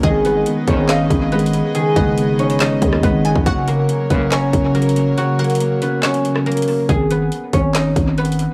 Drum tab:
HH |x-----------x-----------x-----------x-----------x-----------x-----------x---x---x---x-----------|x-----------x-----------x-----------x-----x-----x-----------x-----------x-----------x-----------|x-----------x-----------x-----------x-----------x-----------x-----------x---x---x---x-----------|x-----------x--x--x--x--x-----------x-----------x-----x-----x-----------x--x--x--x--o-----------|
CP |------------------------------------------------x-----------------------------------------------|------------------------------------------------x-----------------------------------------------|------------------------------------------------x-----------------------------------------------|------------------------------------------------x-----------------------------------------------|
SD |------------------------------------------------o-----------------------------------------------|------------------------------------------------o-----------------r-----------------------------|------------------------------------------------o-----------------------------------------------|------------------------------------------------o-----------------r-----------------------------|
BD |o-----------------------------------o-----------------------o-----------------------------------|------------o-----------------------------------------------o-----------o-----------------o-----|o-----------------------------------o-----------------------o-----------------------------------|------------------------------------------------------------------------------------------------|

HH |x-----------x-----------x-----------x-----------x-----------x-----------x---x---x---x-----------|
CP |------------------------------------------------x-----------------------------------------------|
SD |------------------------------------------------o-----------------------------------------------|
BD |o-----------------------------------o-----------------------o-----------------------------------|